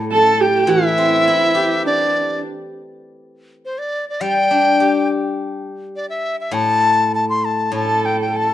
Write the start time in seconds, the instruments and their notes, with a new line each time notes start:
Already playing: guzheng A2
0.11 horsehead fiddle A4, dizi A5
0.40 horsehead fiddle G4, dizi G5
0.67 guzheng E3, horsehead fiddle E4, dizi E5
0.98 guzheng C4
1.28 guzheng E4
1.55 guzheng G4
1.84 horsehead fiddle D4, dizi D5
3.65 dizi C5
3.78 dizi D5
4.09 dizi D5
4.21 guzheng G3, dizi G5
4.51 guzheng D4
4.80 guzheng G4
5.96 dizi D5
6.10 dizi E5
6.41 dizi E5
6.51 guzheng A2, dizi A5
7.15 dizi A5
7.29 dizi C6
7.45 dizi A5
7.72 guzheng A2, horsehead fiddle A4, dizi A5
8.05 dizi G5
8.21 dizi G5
8.31 horsehead fiddle A4
8.37 dizi A5